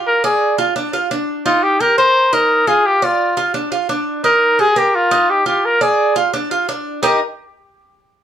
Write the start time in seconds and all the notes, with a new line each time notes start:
Already playing: F4
0.07 A#4
0.24 G#4 D5
0.58 F4
0.76 D4
0.93 F4
1.11 D4
1.46 D#4 F4
1.63 G4
1.80 G4 A#4
1.98 A#4 C5
2.33 D#4 A#4
2.67 F4 G#4
2.86 G4
3.02 F4 D5
3.37 F4
3.54 D4
3.72 F4
3.89 D4
4.24 D#4 A#4
4.59 G4 G#4
4.76 G4 A#4
4.95 F4
5.11 D#4
5.30 G4
5.46 F4 G4
5.65 A#4
5.81 G#4 D5
6.16 F4
6.34 D4
6.51 F4
6.69 D4
7.03 D#4 G4 A#4 D#5